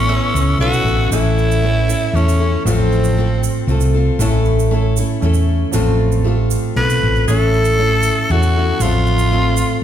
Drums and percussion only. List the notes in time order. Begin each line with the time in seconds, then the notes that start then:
0.36 shaker
0.73 shaker
0.87 shaker
1.12 shaker
1.38 shaker
1.51 shaker
1.90 shaker
2.17 shaker
2.29 shaker
2.67 shaker
2.92 shaker
3.04 shaker
3.43 shaker
3.69 shaker
3.81 shaker
4.20 shaker
4.45 shaker
4.59 shaker
4.97 shaker
5.22 shaker
5.34 shaker
5.73 shaker
6.12 shaker
6.51 shaker
6.90 shaker
7.16 shaker
7.28 shaker
7.54 shaker
7.65 shaker
8.03 shaker
8.30 shaker
8.43 shaker
8.80 shaker
9.06 shaker
9.18 shaker
9.57 shaker